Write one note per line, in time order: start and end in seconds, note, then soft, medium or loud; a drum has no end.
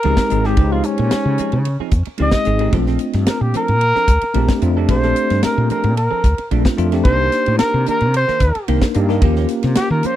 0.00 0.29 G#3 medium
0.00 0.47 A#4 loud
0.00 ride medium
0.04 0.17 C#2 medium
0.04 0.19 F3 medium
0.04 0.30 C4 medium
0.04 0.19 C4 medium
0.04 0.30 D#4 medium
0.04 0.18 D#4 medium
0.04 0.31 G4 loud
0.04 0.18 G#4 medium
0.17 kick medium
0.17 snare loud
0.30 0.55 G#1 medium
0.30 0.44 G#3 medium
0.30 0.44 C4 medium
0.30 0.45 D#4 medium
0.30 0.45 G#4 medium
0.30 hi-hat pedal medium
0.30 ride medium
0.44 0.57 G#3 medium
0.44 0.58 C4 medium
0.44 0.62 C4 soft
0.44 0.58 D#4 medium
0.44 0.62 D#4 soft
0.44 0.74 G4 medium
0.44 0.58 G4 medium
0.44 0.62 G#4 medium
0.44 snare soft
0.57 0.81 C#2 medium
0.57 1.61 G#3 medium
0.57 1.61 D#4 medium
0.57 1.61 G4 medium
0.57 1.61 C5 medium
0.57 kick loud
0.57 ride medium
0.72 0.85 F3 medium
0.72 0.85 C4 medium
0.72 0.85 D#4 medium
0.72 0.86 F4 medium
0.72 0.85 G#4 medium
0.83 1.90 C#4 loud
0.83 muted clean electric guitar stroke soft
0.83 hi-hat pedal medium
0.83 ride medium
0.98 1.10 A#2 medium
0.98 muted clean electric guitar stroke soft
0.98 ride medium
1.11 muted clean electric guitar stroke soft
1.11 muted fretless electric bass stroke soft
1.11 snare loud
1.11 ride medium
1.25 1.37 C#3 medium
1.38 1.53 F3 soft
1.38 1.53 C4 medium
1.38 1.53 D#4 medium
1.38 1.52 G#4 medium
1.38 muted fretless electric bass stroke soft
1.38 hi-hat pedal medium
1.38 ride medium
1.52 1.76 C#3 medium
1.52 muted clean electric guitar stroke soft
1.52 ride medium
1.65 muted clean electric guitar stroke soft
1.65 ride medium
1.79 1.92 F3 medium
1.79 1.92 C4 medium
1.79 1.92 D#4 medium
1.79 1.93 G#4 medium
1.79 muted fretless electric bass stroke soft
1.91 2.04 F2 medium
1.91 kick medium
1.91 hi-hat pedal medium
1.91 ride medium
2.05 muted fretless electric bass stroke soft
2.05 muted clean electric guitar stroke soft
2.05 ride medium
2.18 2.32 C#2 medium
2.18 2.34 F3 medium
2.18 2.44 G#3 medium
2.18 2.45 C4 medium
2.18 2.34 C4 medium
2.18 2.45 D#4 medium
2.18 2.34 D#4 medium
2.18 2.46 G4 medium
2.18 2.34 G#4 medium
2.18 ride medium
2.22 2.74 D#5 loud
2.31 muted clean electric guitar stroke soft
2.31 kick medium
2.31 snare loud
2.45 2.70 G#1 medium
2.45 2.58 G#3 medium
2.45 2.59 C4 medium
2.45 2.59 D#4 medium
2.45 2.60 G#4 medium
2.45 hi-hat pedal medium
2.45 ride medium
2.59 2.73 G#3 medium
2.59 2.70 C4 medium
2.59 2.73 C4 soft
2.59 2.73 D#4 medium
2.59 2.74 D#4 medium
2.59 2.73 G4 medium
2.59 2.74 G#4 medium
2.59 ride medium
2.71 2.97 A#1 medium
2.71 2.87 F3 medium
2.71 3.75 A3 medium
2.71 3.75 C4 medium
2.71 2.87 C4 medium
2.71 3.75 D4 medium
2.71 2.87 D4 medium
2.71 3.76 F4 medium
2.71 2.86 A4 medium
2.71 kick loud
2.71 ride medium
2.86 3.00 F3 medium
2.86 3.00 C4 medium
2.86 3.00 D4 medium
2.86 3.00 A4 medium
2.86 snare soft
2.99 hi-hat pedal medium
2.99 ride medium
3.13 3.26 G2 medium
3.13 muted clean electric guitar stroke soft
3.13 snare soft
3.13 ride medium
3.26 3.43 A#4 medium
3.26 muted fretless electric bass stroke soft
3.26 muted clean electric guitar stroke soft
3.26 snare loud
3.26 ride medium
3.41 3.53 A#2 medium
3.41 3.54 G4 medium
3.54 3.69 F3 medium
3.54 3.68 C4 medium
3.54 3.68 D4 medium
3.54 3.68 A4 medium
3.54 4.61 A#4 loud
3.54 muted fretless electric bass stroke soft
3.54 hi-hat pedal medium
3.54 ride medium
3.68 3.92 A#2 medium
3.68 muted clean electric guitar stroke soft
3.68 ride medium
3.81 muted clean electric guitar stroke soft
3.81 ride medium
3.95 4.08 F3 medium
3.95 4.08 C4 medium
3.95 4.08 D4 medium
3.95 4.08 A4 medium
3.95 muted fretless electric bass stroke soft
3.95 snare soft
4.08 4.20 D2 medium
4.08 muted clean electric guitar stroke soft
4.08 kick medium
4.08 hi-hat pedal medium
4.08 ride medium
4.21 muted clean electric guitar stroke soft
4.21 ride medium
4.34 4.47 A#1 medium
4.34 4.50 F3 medium
4.34 4.61 A3 medium
4.34 4.61 C4 medium
4.34 4.50 C4 medium
4.34 4.61 D4 medium
4.34 4.50 D4 medium
4.34 4.61 G4 loud
4.34 4.49 A4 medium
4.34 ride medium
4.49 muted clean electric guitar stroke soft
4.49 kick medium
4.49 snare loud
4.62 4.85 F2 medium
4.62 4.75 A3 medium
4.62 4.76 C4 medium
4.62 4.76 D4 medium
4.62 4.76 F4 loud
4.62 hi-hat pedal medium
4.62 ride medium
4.77 4.89 A3 medium
4.77 4.89 C4 medium
4.77 4.94 C4 soft
4.77 4.93 D4 soft
4.77 4.89 D4 medium
4.77 4.90 G4 medium
4.77 4.93 A4 medium
4.88 5.12 A#1 loud
4.88 5.92 A3 medium
4.88 5.93 C4 medium
4.88 5.93 D4 medium
4.88 5.93 G4 medium
4.88 5.43 C5 loud
4.88 kick loud
4.88 ride medium
5.03 5.16 F3 medium
5.03 5.17 C4 medium
5.03 5.17 D4 medium
5.03 5.17 A4 medium
5.03 snare soft
5.16 muted clean electric guitar stroke soft
5.16 hi-hat pedal medium
5.16 ride medium
5.30 5.42 G2 medium
5.30 muted clean electric guitar stroke soft
5.30 snare soft
5.30 ride medium
5.43 5.70 A#4 medium
5.43 muted clean electric guitar stroke soft
5.43 muted fretless electric bass stroke soft
5.43 snare loud
5.43 ride medium
5.58 5.69 A#2 medium
5.70 5.85 F3 soft
5.70 5.84 C4 medium
5.70 5.83 D4 soft
5.70 5.83 A4 medium
5.70 5.96 A#4 medium
5.70 muted fretless electric bass stroke soft
5.70 hi-hat pedal medium
5.70 ride medium
5.83 6.07 A#2 medium
5.83 muted clean electric guitar stroke soft
5.83 ride medium
5.97 6.50 A#4 medium
5.97 muted clean electric guitar stroke soft
5.97 ride medium
6.11 6.24 F3 medium
6.11 6.24 C4 medium
6.11 6.24 D4 medium
6.11 6.24 A4 medium
6.11 muted fretless electric bass stroke soft
6.24 6.36 D2 medium
6.24 muted clean electric guitar stroke soft
6.24 kick medium
6.24 hi-hat pedal medium
6.24 ride medium
6.38 muted clean electric guitar stroke soft
6.38 ride medium
6.51 6.64 A#1 medium
6.51 6.66 F3 medium
6.51 6.76 A3 medium
6.51 6.65 C4 medium
6.51 6.76 C4 medium
6.51 6.64 D4 medium
6.51 6.77 D4 medium
6.51 6.77 F4 medium
6.51 6.64 A4 medium
6.51 ride medium
6.65 muted clean electric guitar stroke medium
6.65 kick medium
6.65 snare loud
6.77 7.02 F2 medium
6.77 6.91 A3 loud
6.77 6.92 C4 medium
6.77 6.92 D4 medium
6.77 6.92 F4 loud
6.77 hi-hat pedal medium
6.77 ride medium
6.92 7.05 A3 medium
6.92 7.06 C4 medium
6.92 7.07 C4 soft
6.92 7.05 D4 medium
6.92 7.07 D4 medium
6.92 7.06 G4 medium
6.92 7.06 A4 medium
6.92 snare soft
6.92 ride medium
7.04 7.28 C2 loud
7.04 7.20 D#3 medium
7.04 8.08 A#3 medium
7.04 7.19 A#3 medium
7.04 8.09 D4 medium
7.04 7.19 D4 medium
7.04 8.09 D#4 medium
7.04 8.09 G4 medium
7.04 7.19 G4 medium
7.04 7.58 C5 loud
7.04 kick loud
7.04 ride medium
7.20 7.32 D#3 medium
7.20 7.32 A#3 medium
7.20 7.33 D4 medium
7.20 7.33 G4 medium
7.32 snare soft
7.32 hi-hat pedal medium
7.32 ride medium
7.46 7.59 A2 medium
7.46 muted clean electric guitar stroke soft
7.46 ride medium
7.58 7.86 A#4 loud
7.58 muted clean electric guitar stroke soft
7.58 muted fretless electric bass stroke soft
7.58 snare loud
7.58 ride medium
7.74 7.85 C3 medium
7.86 8.01 D#3 medium
7.86 8.01 A#3 medium
7.86 8.01 D4 medium
7.86 8.01 G4 medium
7.86 8.14 A#4 loud
7.86 muted fretless electric bass stroke soft
7.86 hi-hat pedal medium
7.86 ride medium
8.00 8.24 C3 medium
8.00 ride medium
8.14 8.68 C5 loud
8.14 muted clean electric guitar stroke soft
8.14 ride medium
8.28 8.40 D#3 medium
8.28 8.41 A#3 medium
8.28 8.41 D4 medium
8.28 8.41 G4 medium
8.28 muted fretless electric bass stroke soft
8.28 snare soft
8.40 8.53 D#2 medium
8.40 kick medium
8.40 hi-hat pedal medium
8.40 ride medium
8.55 muted clean electric guitar stroke soft
8.55 muted fretless electric bass stroke soft
8.55 ride medium
8.68 8.80 C2 medium
8.68 8.82 D#3 medium
8.68 8.94 A#3 medium
8.68 8.82 A#3 medium
8.68 8.94 D4 medium
8.68 8.82 D4 medium
8.68 8.94 D#4 medium
8.68 8.82 G4 medium
8.68 8.94 A#4 medium
8.68 ride medium
8.82 muted clean electric guitar stroke soft
8.82 kick medium
8.82 snare loud
8.94 9.18 G2 medium
8.94 9.07 A#3 loud
8.94 9.08 D4 loud
8.94 9.08 D#4 medium
8.94 9.09 G4 loud
8.94 hi-hat pedal medium
8.94 ride medium
9.09 9.20 A#3 loud
9.09 9.22 A#3 medium
9.09 9.21 D4 medium
9.09 9.23 D4 medium
9.09 9.22 D#4 medium
9.09 9.23 G4 medium
9.09 9.22 A#4 loud
9.09 snare soft
9.21 9.45 D#2 medium
9.21 9.37 F3 medium
9.21 10.16 A#3 medium
9.21 9.37 A#3 medium
9.21 10.16 C#4 medium
9.21 9.37 C#4 medium
9.21 10.16 F4 medium
9.21 10.16 G4 loud
9.21 9.36 G4 medium
9.21 kick loud
9.21 ride medium
9.36 9.49 F3 medium
9.36 9.49 A#3 medium
9.36 9.49 C#4 medium
9.36 9.50 G4 medium
9.36 snare soft
9.49 muted clean electric guitar stroke soft
9.49 snare soft
9.49 hi-hat pedal medium
9.49 ride medium
9.63 9.75 C3 loud
9.63 muted clean electric guitar stroke soft
9.63 snare soft
9.63 ride medium
9.75 9.90 G4 loud
9.75 muted fretless electric bass stroke soft
9.75 muted clean electric guitar stroke soft
9.75 snare loud
9.75 ride medium
9.90 10.02 D#3 medium
9.90 10.07 A#4 medium
10.03 10.16 F3 medium
10.03 10.16 A#3 medium
10.03 10.16 C#4 medium
10.03 10.16 G4 medium
10.03 10.16 C5 loud
10.03 muted fretless electric bass stroke soft
10.03 hi-hat pedal medium
10.03 ride medium